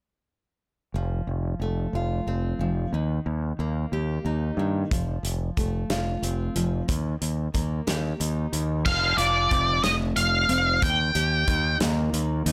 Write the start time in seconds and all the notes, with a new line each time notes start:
0.94 F1 F3
1.27 F1
1.60 F1 A3
1.93 F1 F4
2.27 F1 C4
2.59 F1 F3
2.93 D#2 D#3
3.26 D#2
3.59 D#2 A#3
3.92 D#2 G4
4.25 D#2 D#4
4.57 G2 D#3
4.91 F1 F3, kick, closed hi-hat
5.23 F1, closed hi-hat
5.57 F1 A3, kick, closed hi-hat
5.90 F1 F4, snare, closed hi-hat
6.22 F1 C4, closed hi-hat
6.56 F1 F3, closed hi-hat
6.88 D#2 D#3, kick, closed hi-hat
7.22 D#2, closed hi-hat
7.54 D#2 A#3, kick, closed hi-hat
7.87 D#2 G4, snare, closed hi-hat
8.20 D#2 D#4, closed hi-hat
8.53 D#2 D#3, closed hi-hat
8.85 F1 F3 F5, kick, crash
9.17 F1 F4 D5, closed hi-hat
9.51 F1 C4, kick, closed hi-hat
9.84 F1 A3 D#5, snare, closed hi-hat
10.16 F1 F3 F5, closed hi-hat
10.49 F1 C4, closed hi-hat
10.82 D#2 D#3 G5, kick, closed hi-hat
11.15 D#2 G4, closed hi-hat
11.48 D#2 D#4, kick, closed hi-hat
11.80 D#2 A#3, snare, closed hi-hat
12.13 D#2 D#3, closed hi-hat
12.46 D#2 D#4, closed hi-hat